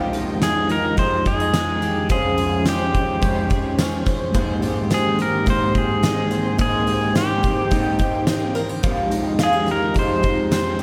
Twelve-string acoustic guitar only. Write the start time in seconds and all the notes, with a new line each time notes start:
Already playing: F3 D#4 G4
0.13 D#4
0.69 D#4
0.97 G#3
1.26 C#4
1.40 D#4
1.54 G#3
1.82 G4
2.10 F3 C5
2.38 G#4
2.65 C5
3.22 C#4
3.50 G#4
3.79 C#4
4.06 C5
4.34 G#3 C5
4.62 G4
4.90 C5
5.19 G4
5.46 D#4
6.03 D#4
6.31 C5
6.58 G#3 C5
6.87 G4
7.15 C5
7.43 G4
7.71 D#4
7.99 G4
8.27 D#4
8.55 A#4
8.69 C5
8.83 F3 G4
9.11 D#4
9.39 F4
9.53 G4
9.66 D#4
9.94 G#3
10.23 D#4
10.51 G#3
10.79 G4